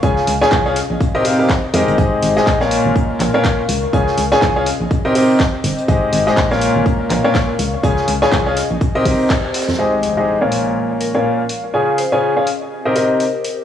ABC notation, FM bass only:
X:1
M:4/4
L:1/16
Q:"Swing 16ths" 1/4=123
K:Cphr
V:1 name="FM bass" clef=bass
D,, z D,, z C,,2 z B,,, z6 F,, G,,, | A,,, z A,,, z B,,,2 z A,,, z2 B,,, z3 D,, z | D,, z D,, z C,,2 z B,,, z6 G,,, z | A,,, z A,,, z B,,,2 z A,,, z2 B,,, z3 D,, z |
D,, z D,, z C,,2 z B,,, z2 C,, z4 F,, | z16 | z16 |]